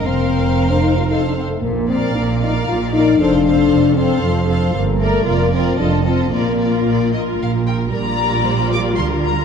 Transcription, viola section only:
X:1
M:3/4
L:1/8
Q:1/4=114
K:Bb
V:1 name="Viola section"
B4 A z | z B2 B2 B | A A2 A2 A | z B F F F F |
F F2 F2 F | [G,F]6 |]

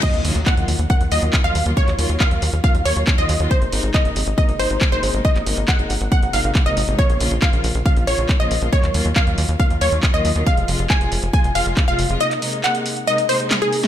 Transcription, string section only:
X:1
M:4/4
L:1/16
Q:1/4=138
K:Ebdor
V:1 name="String section" clef=bass
[E,G,B,F]2 [E,G,B,F]2 [E,G,B,F]2 z2 [E,G,B,F]2 [E,G,B,F]2 z [E,G,B,F]2 [E,G,B,F] | [E,G,B,F]2 [E,G,B,F]2 [E,G,B,F]2 z2 [E,G,B,F]2 [E,G,B,F]2 z [E,G,B,F]2 [E,G,B,F] | [C,A,B,E]2 [C,A,B,E]2 [C,A,B,E]2 z2 [C,A,B,E]2 [C,A,B,E]2 z [C,A,B,E]2 [C,A,B,E] | [C,A,B,E]2 [C,A,B,E]2 [C,A,B,E]2 z2 [C,A,B,E]2 [C,A,B,E]2 z [C,A,B,E]2 [C,A,B,E] |
[D,F,B,F]2 [D,F,B,F]2 [D,F,B,F]2 z2 [D,F,B,F]2 [D,F,B,F]2 z [D,F,B,F]2 [D,F,B,F] | [E,G,B,F]2 [E,G,B,F]2 [E,G,B,F]2 z2 [E,G,B,F]2 [E,G,B,F]2 z [E,G,B,F]2 [E,G,B,F] | [C,F,A,F]2 [C,F,A,F]2 [C,F,A,F]2 z2 [C,F,A,F]2 [C,F,A,F]2 z [C,F,A,F]2 [C,F,A,F] | [C,A,B,E]2 [C,A,B,E]2 [C,A,B,E]2 z2 [C,A,B,E]2 [C,A,B,E]2 z [C,A,B,E]2 [C,A,B,E] |]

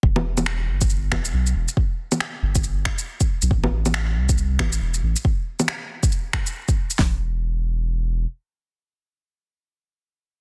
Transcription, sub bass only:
X:1
M:4/4
L:1/16
Q:"Swing 16ths" 1/4=138
K:Em
V:1 name="Sub bass" clef=bass
E,,,6 G,,,4 z2 B,,,2 E,,, z | z6 G,,,4 z4 z B,,, | z6 C,,4 A,,,2 E,,,2 A,,, z | z16 |
E,,,12 z4 | z16 |]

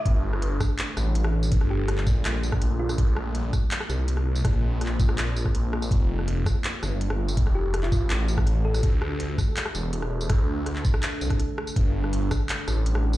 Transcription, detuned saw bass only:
X:1
M:4/4
L:1/8
Q:1/4=164
K:Gdor
V:1 name="Detuned saw bass" clef=bass
G,,,3 z2 A,,,3 | G,,,3 B,,,3 B,,,2 | B,,,3 z2 C,,3 | B,,,3 B,,,3 B,,,2 |
F,,,3 z2 G,,,3 | F,,,3 A,,,3 A,,,2 | D,,3 z2 E,,,3 | D,,3 z2 C,, z2 |
G,,,3 z2 A,,,3 |]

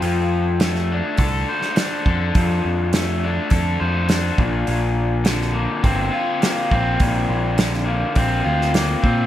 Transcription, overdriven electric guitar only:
X:1
M:4/4
L:1/8
Q:1/4=103
K:Dm
V:1 name="Overdriven electric guitar"
F,2 A, D A c D A | F,2 A, D A c D B,, | B,,2 D, B, C F B, C | B,,2 D, B, C F B, C |]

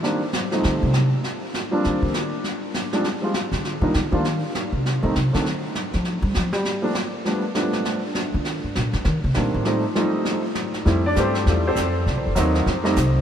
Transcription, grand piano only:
X:1
M:4/4
L:1/8
Q:"Swing" 1/4=200
K:F
V:1 name="Grand piano"
z8 | [K:Bb] z8 | z8 | z8 |
z8 | z8 | z8 | z8 |
z8 | [K:F] z [Dd] [Ac]2 [A,EFA] [CGAc]3 | z8 |]
V:2 name="Grand piano"
[_E,G,B,CD] z2 [F,G,A,C_E]3 z2 | [K:Bb] z3 [F,G,B,CD]3 z2 | z3 [F,G,_A,CD] z [F,G,A,CF] z2 | z [F,G,B,DE] z [F,G,B,DF] z4 |
z [E,G,A,CE] z [E,_G,A,CD] z4 | z4 z [F,G,A,B,D] z2 | [F,G,A,=B,D] z [F,G,A,B,D]3 z3 | z6 [E,G,B,CD]2 |
[F,G,A,CE] z [F,G,A,CE]3 z3 | [K:F] [G,A,CE] z [G,A,CG]3 z3 | z2 [_G,B,C_E]2 z [=G,A,CE] z2 |]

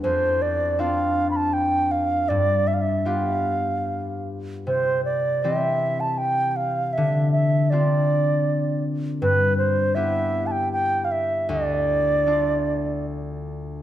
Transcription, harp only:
X:1
M:3/4
L:1/8
Q:1/4=79
K:Ddor
V:1 name="Harp"
F,,2 [CDF]4 | G,,2 [B,FG]4 | C,2 [E,CG]4 | D,2 [CDF]4 |
G,,2 [B,EG]4 | D,,2 [A,DF]4 |]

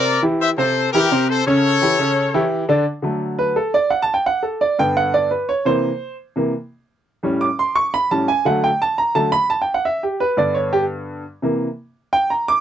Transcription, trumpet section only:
X:1
M:4/4
L:1/8
Q:1/4=172
K:D
V:1 name="Trumpet section"
[_Bd] z [=ce] [Ac]2 [GB]2 [Ac] | [Ac]6 z2 | z8 | z8 |
z8 | z8 | z8 | z8 |
z8 |]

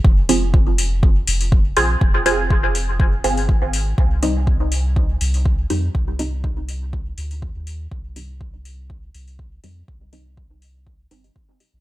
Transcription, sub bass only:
X:1
M:4/4
L:1/16
Q:"Swing 16ths" 1/4=122
K:Cm
V:1 name="Sub bass" clef=bass
F,,,8- F,,,2 F,,,4 B,,,2 | F,,,8- F,,,2 G,,,3 A,,,3 | C,,8- C,,2 C,,4 F,,2 | C,,8- C,,2 D,,3 E,,3 |
C,,8- C,,2 C,,4 F,,2 | C,,8- C,,2 G,,,2 z3 B,,, |]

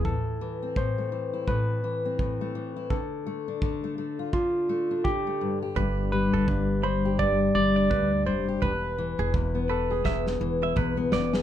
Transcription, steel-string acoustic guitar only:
X:1
M:4/4
L:1/16
Q:"Swing 16ths" 1/4=84
K:Am
V:1 name="Steel-string acoustic guitar" clef=bass
A,,2 E, C A,, A, E, E A,,2 E, C A,, A, E, E | D,2 A, D D, A, A, F D,2 A, D D, A, G,, G | G,,2 G, D G,,2 G, G G,,2 G, D G,,2 G, G | E,,2 E, E E,, B, E, ^G E,,2 E, E E,, B, E, G |]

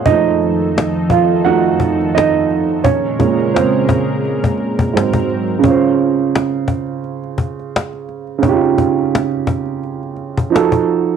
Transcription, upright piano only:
X:1
M:4/4
L:1/8
Q:"Swing 16ths" 1/4=86
K:Fphr
V:1 name="Upright piano"
e3 [Ff] [Gg]2 [Ee]2 | [Dd]2 [Cc]4- [Cc] z | [K:Dblyd] [D,DFc]8 | [D,DEFG]6 [F,E_G=A]2 |]
V:2 name="Upright piano" clef=bass
[F,=A,E]3 z [F,A,E] z3 | z [B,,A,D] z4 [A,,G,C] z | [K:Dblyd] z8 | z8 |]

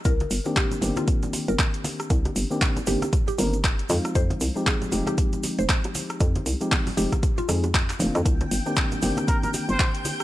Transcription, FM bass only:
X:1
M:4/4
L:1/16
Q:"Swing 16ths" 1/4=117
K:Cm
V:1 name="FM bass" clef=bass
C,, z G,,, z3 G,,, z4 G,,, z4 | C,, z G,,, z3 G,,, z3 G,,,3 z F,, z | F,, z C,, z3 F,,, z4 F,,, z4 | F,, z C,, z3 F,,, z3 F,,3 z F,,, F,, |
C,, z G,,, z3 G,,, z4 G,,, z4 |]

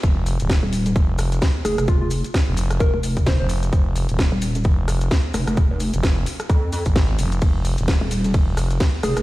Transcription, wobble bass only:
X:1
M:4/4
L:1/16
Q:"Swing 16ths" 1/4=130
K:Ebmix
V:1 name="Wobble bass" clef=bass
z4 z E,,,3 z6 F,,, F,,,- | F,,,3 z6 F,,,4 z3 | z4 z E,,,3 z6 F,,, F,,,- | F,,,3 z4 z F,,3 z4 z |
z4 z E,,,3 z6 F,,, F,,, |]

